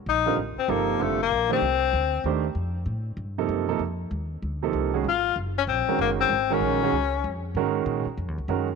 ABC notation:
X:1
M:4/4
L:1/8
Q:"Swing" 1/4=192
K:Fphr
V:1 name="Grand piano"
z [=D,=G,CFB] z2 [C,F,B,E=A]2 [D,G,CFA] z | z [E,=A,=D=Gc] z4 [E,A,DGc] z | z4 z [C,F,B,E=A]2 [C,F,B,EA] | z4 z [C,F,B,E=A]2 [E,_A,DG_A] |
z4 z [E,A,DGB]3 | z [E,A,DGB]2 [E,A,DGA] z4 | [E,A,DGB]3 z3 [E,A,DGB] z |]
V:2 name="Tenor saxophone"
E2 z C B,2 =A, B,- | B, C6 z | z8 | z8 |
F2 z D C2 B, C- | C D6 z | z8 |]
V:3 name="Upright bass" clef=bass
B,,,2 =A,,, z =G,,,2 F,,,2 | B,,,2 C,,2 =D,,2 E,,2 | F,,2 =A,,2 =G,,2 _G,,2 | F,,2 E,,2 =D,,2 C,,2 |
A,,,2 G,,,2 B,,, z G,,,2 | A,,,2 B,,,2 D,,2 F,,2 | A,,2 B,, z (3F,, E,, D,, G,,2 |]